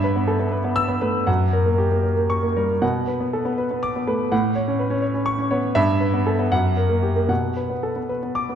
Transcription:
grand piano
Already playing: G2 E5
0.04 B4
0.16 B3
0.28 A4
0.39 B3
0.51 B4
0.64 B3
0.76 E6
0.89 B3
1.01 A3 B4
1.27 F#2 F#5
1.53 A#4
1.66 A#3
1.78 G4
1.91 A#3
2.03 A#4
2.17 A#3
2.30 C#6
2.43 A#3
2.57 G3 A#4
2.82 B2 F#5
3.07 B4
3.20 B3
3.33 A4
3.45 B3
3.58 B4
3.71 B3
3.83 D6
3.96 B3
4.07 A3 B4
4.32 A2 F#5
4.55 C#5
4.68 C#4
4.79 B4
4.90 C#4
5.02 C#5
5.14 C#4
5.26 C#6
5.39 C#4
5.51 B3 C#5
5.75 G2 E5
6.00 B4
6.14 B3
6.26 A4
6.39 B3
6.52 F#2 F#5
6.77 A#4
6.89 A#3
7.03 G4
7.16 A#3
7.29 B2 F#5
7.57 B4
7.70 B3
7.83 A4
7.96 B3
8.09 B4
8.23 B3
8.35 D6
8.49 B3

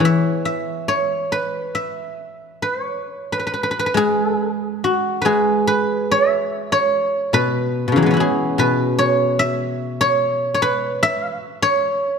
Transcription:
guzheng
Already playing: B3 C#4 E4 F#4 G#4 B4 C#5
0.00 E3
0.05 E5
0.45 E5
0.88 C#5
1.32 B4
1.75 E5
2.62 B4
2.82 C#5
3.32 B4
3.39 B4
3.47 B4
3.54 B4
3.63 B4
3.71 B4
3.79 B4
3.86 B4
3.94 G#3 G#4
4.84 F#4
5.22 G#3 B4
5.26 G#4
5.67 B4
6.12 E5
6.72 C#5
7.33 B2 B4
7.88 B2
7.92 C#3 E3
7.97 F#3
8.02 G#3 B3
8.11 C#4 E4
8.17 F#4 G#4
8.58 B2 B4
8.99 C#5
9.39 E5
10.01 C#5
10.54 C#5
10.62 B4
11.03 E5
11.62 C#5

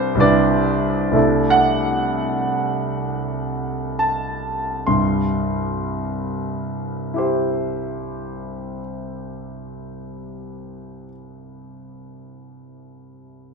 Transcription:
grand piano
Already playing: C2 G3 D4 E4 B4 C5 D5
0.15 C2 G3 D4
0.19 E4 B4 D5
1.11 C2 A3 D4 E4
1.16 A4
1.50 F#5
3.99 A5
4.87 C2 G2 C6
7.14 E4 G4
7.18 C5

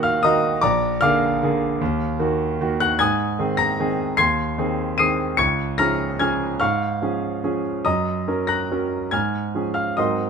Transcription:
grand piano
Already playing: A#2 D#3 A#3 F#4 F#5 D#6 F#6
0.03 F5 F6
0.23 D#3 A#3 F#4 D#5 A#5 D#6
0.61 A#1 D5 A#5 D6
1.01 D3 A#3 G#4 F5 D6 F6
1.43 D3 A#3 G#4
1.81 D#2
2.19 D#3 A#3 F#4
2.61 D#3 A#3 F#4
2.80 F#5 F#6
2.99 G#2 G#5 D#6 G#6
3.39 D#3 C4 G#4
3.57 A#5 A#6
3.80 D#3 C4 G#4
4.17 D#2 C6 G#6 C7
4.58 D#3 C4 G#4
4.98 D#3 C4 G#4 D#6 C7 D#7
5.37 C#2 C#6 G#6 C#7
5.78 F3 C#4 G#4 A#5 F6 A#6
6.19 F3 C#4 G#4 G#5 F6 G#6
6.60 G#2 F5 C#6 F6
7.02 F3 C#4 G#4
7.44 F3 C#4 G#4
7.85 F#2 D#5 A#5 D#6
8.28 F#3 C#4 A#4
8.47 A#5 F#6 A#6
8.71 F#3 C#4 A#4
9.11 G#2 G#5 F6 G#6
9.55 F3 C#4 G#4
9.74 F5 F6
9.97 G#2 F#3 C4 A#4 D#5 C6 D#6

